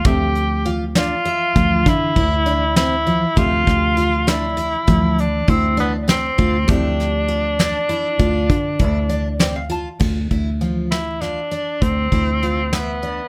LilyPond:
<<
  \new Staff \with { instrumentName = "Twelve-string acoustic guitar" } { \time 11/8 \key d \minor \tempo 4 = 100 g'4 f'8 d'8 e''8 f4 e'8 d'8 c'8 f8 | g'4 f'8 d'8 e'8 f4 e'8 d'8 c'8 f'8 | g'4 f'8 d'8 e'8 f'4 e'8 d'8 c'8 f'8 | f'8 e'8 f4 f'8 d'4 e'8 f'8 e'8 d'8 | }
  \new Staff \with { instrumentName = "Tenor saxophone" } { \time 11/8 \key d \minor g'4 r8 f'4. e'4. e'4 | f'4. e'4. d'8 c'8 b8 c'4 | d'1~ d'8 r4 | r4. e'8 d'4 c'4. b4 | }
  \new Staff \with { instrumentName = "Hollow-body jazz guitar" } { \time 11/8 \key d \minor << { r1 r4. | r1 r4. | r1 r8 d''16 f''16 a''8 | r1 r4. | } \\ { <f a c' e''>1~ <f a c' e''>4. | <c f a e''>1~ <c f a e''>4. | <f a c' e'>1~ <f a c' e'>4. | r1 r4. | } >> }
  \new Staff \with { instrumentName = "Fingered electric bass" } { \clef bass \time 11/8 \key d \minor d,2 r8 d,8 d8 d,2 | d,8 d,2 d,4 d,4. d,8 | d,2 r8 d,8 d8 d,2 | d,8 d,2 r8 d,8 d,2 | }
  \new DrumStaff \with { instrumentName = "Drums" } \drummode { \time 11/8 <hh bd>8 hh8 hh8 <hh sn>8 hh8 <hh bd sn>8 <hh bd sn>8 <hh bd>8 hh8 <hh sn>8 hh8 | <hh bd>8 <hh bd sn>8 hh8 <hh sn>8 hh8 <hh bd>8 hh8 <hh bd>8 hh8 <hh sn>8 <hh bd>8 | <hh bd>8 <hh sn>8 hh8 <hh sn>8 hh8 <hh bd>8 <hh bd>8 <hh bd>8 hh8 <hh sn>8 hh8 | <cymc bd>8 <hh bd>8 hh8 <hh sn>8 <hh sn>8 hh8 <hh bd>8 <hh bd>8 hh8 <hh sn>8 hh8 | }
>>